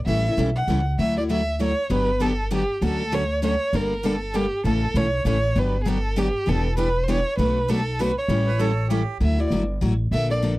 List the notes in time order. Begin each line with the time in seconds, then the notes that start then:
0.06 A1 E3 G3 C#4 E4 A4 E5
0.26 C#4 E4 A4
0.37 B1 E3 G3 C#4 E4 A4
0.56 F#5
0.68 C#2 E3 G3 C#4 E4 A4
0.99 D2 D3 F#3 A3 E4 F#4 A4 E5
1.17 A3 E4 F#4 D5
1.30 D3 F#3 A3 E4 F#4 A4 E5
1.60 D3 F#3 A3 E4 F#4 A4 C#5
1.90 G1 D3 F#3 B3 D4 G4 B4
2.20 D3 F#3 B3 D4 G4 A4
2.51 D3 F#3 B3 D4 G4
2.81 D2 D3 F#3 A3 C#4 F#4 A4
3.12 D3 F#3 A3 C#4 F#4 A4 C#5
3.42 D3 F#3 A3 C#4 F#4 A4 C#5
3.73 G1 D3 G3 A#3 D4 A4 A#4
4.05 D3 G3 A#3 D4 A4
4.34 D3 G3 A#3 D4 G4 A4
4.64 A1 C#3 E3 A3 C#4 E4 A4
4.94 B1 C#3 E3 A3 C#4 E4 A4 C#5
5.25 A1 C#3 E3 A3 C#4 E4 A4 C#5
5.55 G1 D3 F#3 B3 D4 G4 B4
5.83 D3 F#3 B3 D4 G4 G#4
5.88 A4
6.16 D3 F#3 B3 D4 G4
6.46 E1 E3 G3 B3 D4 E4 G4 A4 B4
6.77 E3 G3 B3 D4 E4 G4 B4
7.04 C5
7.08 E3 G3 B3 D4 E4 G4 B4 C#5
7.37 B1 B2 F#3 A3 D4 F#4 B4
7.69 B2 F#3 A3 D4 F#4 A4 B4
8.00 B2 F#3 A3 D4 F#4 B4
8.18 C#5
8.28 A1 E3 G3 C#4 E4 A4
8.47 B4
8.59 E3 G3 C#4 E4 A4
8.89 E3 G3 C#4 E4 G4 A4
9.20 D2 D3 F#3 A3 E4 F#4 E5
9.38 A3 E4 F#4 D5
9.50 G1 D3 F#3 A3 E4 F#4
9.81 A1 D3 F#3 A3 E4 F#4
10.11 A#1 D3 F3 A#3 D4 A4 E5
10.30 A#3 D4 A4 D5
10.43 D3 F3 A#3 D4 A4